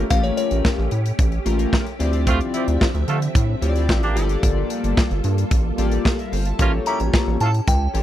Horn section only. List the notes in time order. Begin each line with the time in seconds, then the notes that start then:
2.26 A3 C4 F4
2.53 C4 E4 G4
3.08 A3 F4 A4
4.03 A#3 D4 G4
6.59 A#3 C#4 F4
6.86 C#4 E4 G4
7.41 A3 F4 A4